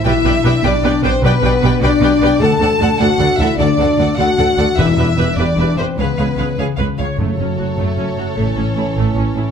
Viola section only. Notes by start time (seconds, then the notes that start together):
0.06 G4 B4
0.24 G4 B4
0.44 G4 B4
0.64 G4 B4
0.84 G4 B4
1.03 G4 B4
1.25 G4 B4
1.42 G4 B4
1.63 G4 B4
1.83 G4 B4
2.02 G4 B4
2.22 G4 B4
2.42 A4
2.61 A4
2.81 A4
3.00 A4
3.20 A4
3.40 A4
3.60 A4
3.79 A4
4.00 A4
4.20 A4
4.39 A4
4.58 A4
4.78 G4 B4
4.99 G4 B4
5.19 G4 B4
5.40 G4 B4
5.60 G4 B4
5.79 G4 B4
6.00 G#4 B4
6.20 G#4 B4
6.39 G#4 B4
6.60 G#4
6.79 B4
7.00 C#5
7.20 A3
7.40 C#4
7.58 F#4
7.79 A3
7.98 C#4
8.18 F#4
8.36 A3
8.58 C#4
8.78 E4
8.98 A3
9.18 C#4
9.37 E4